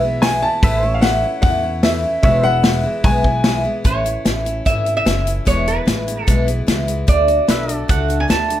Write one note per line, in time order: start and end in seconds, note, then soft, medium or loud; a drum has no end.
0.00 0.43 B1 medium
0.00 0.23 B3 medium
0.00 0.23 E4 medium
0.00 0.61 B4 medium
0.00 0.23 E5 loud
0.00 0.62 E5 medium
0.05 0.21 E3 soft
0.05 0.22 G#3 medium
0.22 0.43 E3 medium
0.22 0.43 G#3 medium
0.22 0.42 B3 medium
0.22 0.41 E4 medium
0.22 0.41 G#5 loud
0.22 snare loud
0.22 open hi-hat medium
0.42 0.62 E3 soft
0.42 0.63 G#3 medium
0.42 0.63 B3 medium
0.42 0.62 E4 medium
0.42 0.92 A5 loud
0.63 1.23 A1 loud
0.63 0.83 A2 medium
0.63 0.83 E3 loud
0.63 0.83 A3 loud
0.63 0.83 C#4 loud
0.63 0.81 E4 loud
0.63 0.88 B4 medium
0.63 2.23 E5 medium
0.63 kick loud
0.63 open hi-hat medium
0.83 1.02 A3 medium
0.83 1.03 C#4 medium
0.83 1.03 E4 medium
0.88 2.23 C#5 medium
0.94 1.02 F5 medium
1.01 1.23 E3 medium
1.01 1.23 A3 medium
1.01 1.23 C#4 medium
1.01 1.22 E4 medium
1.01 1.40 F#5 loud
1.01 snare loud
1.01 open hi-hat medium
1.23 1.42 A3 medium
1.23 1.42 C#4 medium
1.23 1.43 E4 medium
1.42 2.04 E2 medium
1.42 1.63 A2 medium
1.42 1.63 E3 medium
1.42 1.63 A3 loud
1.42 1.62 C#4 medium
1.42 1.61 E4 loud
1.42 1.80 F#5 loud
1.42 kick loud
1.42 open hi-hat soft
1.62 1.83 A3 soft
1.62 1.83 C#4 medium
1.62 1.83 E4 medium
1.83 2.03 E3 medium
1.83 2.04 A3 medium
1.83 2.03 C#4 medium
1.83 2.02 E4 medium
1.83 2.21 E5 medium
1.83 snare loud
1.83 open hi-hat medium
2.03 2.24 A3 soft
2.03 2.24 C#4 medium
2.03 2.23 E4 medium
2.23 2.84 E1 loud
2.23 2.44 E2 medium
2.23 2.44 B2 medium
2.23 2.44 E3 medium
2.23 2.44 G#3 medium
2.23 2.43 B3 loud
2.23 2.42 E4 medium
2.23 2.49 C#5 medium
2.23 2.44 E5 medium
2.23 3.84 E5 medium
2.23 kick loud
2.23 open hi-hat soft
2.43 2.62 E3 soft
2.43 2.63 G#3 medium
2.43 2.64 B3 medium
2.43 2.64 E4 medium
2.43 2.81 F#5 loud
2.49 3.84 B4 medium
2.63 2.84 E3 medium
2.63 2.84 G#3 medium
2.63 2.83 B3 medium
2.63 2.82 E4 medium
2.63 snare loud
2.63 open hi-hat medium
2.83 3.03 E3 medium
2.83 3.04 G#3 medium
2.83 3.04 B3 soft
2.83 3.04 E4 medium
3.04 3.65 B1 medium
3.04 3.24 E2 medium
3.04 3.25 B2 medium
3.04 3.25 E3 medium
3.04 3.24 G#3 medium
3.04 3.23 B3 loud
3.04 3.22 E4 medium
3.04 3.61 G#5 loud
3.04 kick loud
3.04 open hi-hat medium
3.23 3.43 E3 soft
3.23 3.43 G#3 soft
3.23 3.44 B3 medium
3.23 3.44 E4 medium
3.23 kick medium
3.44 3.65 E3 medium
3.44 3.64 G#3 medium
3.44 3.64 B3 medium
3.44 3.62 E4 medium
3.44 snare loud
3.44 open hi-hat medium
3.64 3.83 E3 medium
3.64 3.85 G#3 medium
3.64 3.85 B3 medium
3.64 3.84 E4 medium
3.84 4.15 A1 medium
3.84 4.05 A2 medium
3.84 4.05 E3 medium
3.84 4.05 A3 medium
3.84 4.05 C#4 medium
3.84 4.03 E4 medium
3.84 4.69 C#5 medium
3.84 kick loud
3.84 closed hi-hat medium
4.04 4.25 A3 soft
4.04 4.25 C#4 soft
4.04 4.25 E4 medium
4.04 closed hi-hat medium
4.25 4.60 A1 medium
4.25 4.45 E3 medium
4.25 4.46 A3 medium
4.25 4.46 C#4 medium
4.25 4.44 E4 medium
4.25 snare loud
4.25 closed hi-hat medium
4.45 4.65 A3 soft
4.45 4.65 C#4 medium
4.45 4.66 E4 medium
4.45 closed hi-hat medium
4.65 5.00 G#1 medium
4.65 4.86 A2 medium
4.65 4.86 E3 medium
4.65 4.86 A3 medium
4.65 4.85 C#4 medium
4.65 4.84 E4 medium
4.65 4.95 E5 medium
4.65 kick medium
4.65 closed hi-hat medium
4.85 5.05 A3 soft
4.85 5.06 C#4 soft
4.85 5.06 E4 soft
4.85 closed hi-hat soft
4.97 5.44 E5 medium
5.05 5.41 F#1 medium
5.05 5.26 E3 medium
5.05 5.26 A3 medium
5.05 5.26 C#4 medium
5.05 5.24 E4 medium
5.05 snare loud
5.05 closed hi-hat medium
5.25 5.46 A3 soft
5.25 5.47 C#4 soft
5.25 5.46 E4 soft
5.25 closed hi-hat medium
5.45 5.77 E1 medium
5.45 5.66 E2 medium
5.45 5.67 B2 medium
5.45 5.67 E3 medium
5.45 5.66 G#3 medium
5.45 5.66 B3 medium
5.45 5.65 E4 medium
5.45 5.68 C#5 medium
5.45 kick medium
5.45 closed hi-hat medium
5.66 5.84 E3 soft
5.66 5.85 G#3 soft
5.66 5.86 B3 soft
5.66 5.87 E4 medium
5.66 6.24 B4 medium
5.66 closed hi-hat medium
5.86 6.22 A1 medium
5.86 6.07 E3 medium
5.86 6.07 G#3 medium
5.86 6.06 B3 medium
5.86 6.05 E4 medium
5.86 snare loud
5.86 closed hi-hat medium
6.07 6.26 E3 soft
6.07 6.27 G#3 medium
6.07 6.27 B3 medium
6.07 6.27 E4 soft
6.07 closed hi-hat medium
6.24 6.47 E2 medium
6.24 6.48 B2 medium
6.24 6.48 E3 medium
6.24 6.44 A4 medium
6.24 kick medium
6.24 closed hi-hat medium
6.28 6.62 B1 medium
6.28 6.47 G#3 loud
6.28 6.46 B3 loud
6.28 6.45 E4 medium
6.46 6.65 E3 soft
6.46 6.66 G#3 soft
6.46 6.67 B3 medium
6.46 6.67 E4 soft
6.46 closed hi-hat medium
6.67 7.02 C#2 medium
6.67 6.88 E3 medium
6.67 6.87 G#3 medium
6.67 6.86 B3 medium
6.67 6.85 E4 medium
6.67 snare loud
6.67 closed hi-hat medium
6.86 7.06 E3 soft
6.86 7.07 G#3 medium
6.86 7.08 B3 medium
6.86 7.07 E4 medium
6.86 closed hi-hat medium
7.07 7.39 D2 medium
7.07 7.28 D3 medium
7.07 7.28 A3 medium
7.07 7.28 D4 medium
7.07 7.26 F#4 medium
7.07 7.92 D5 medium
7.07 kick medium
7.07 closed hi-hat medium
7.28 7.48 A3 soft
7.28 7.48 D4 soft
7.28 7.48 F#4 medium
7.28 closed hi-hat medium
7.47 7.83 B1 medium
7.47 7.69 D3 medium
7.47 7.69 A3 medium
7.47 7.68 D4 medium
7.47 7.67 F#4 medium
7.47 7.75 B4 medium
7.47 7.76 E5 medium
7.47 snare loud
7.47 closed hi-hat medium
7.68 7.88 A3 soft
7.68 7.88 D4 medium
7.68 7.89 F#4 medium
7.68 closed hi-hat medium
7.75 8.60 A4 medium
7.75 8.60 D5 medium
7.88 8.24 C#2 medium
7.88 8.09 D3 medium
7.88 8.10 A3 medium
7.88 8.08 D4 medium
7.88 8.07 F#4 medium
7.88 8.20 F#5 medium
7.88 kick loud
7.88 closed hi-hat medium
8.08 8.28 A3 soft
8.08 8.29 D4 soft
8.08 8.29 F#4 medium
8.08 closed hi-hat medium
8.20 8.25 G#5 medium
8.28 8.60 D2 medium
8.28 8.49 D3 medium
8.28 8.50 A3 medium
8.28 8.48 D4 medium
8.28 8.47 F#4 medium
8.28 8.59 A5 medium
8.28 snare loud
8.28 closed hi-hat medium
8.48 8.60 A3 soft
8.48 8.60 D4 soft
8.48 8.60 F#4 soft
8.48 closed hi-hat medium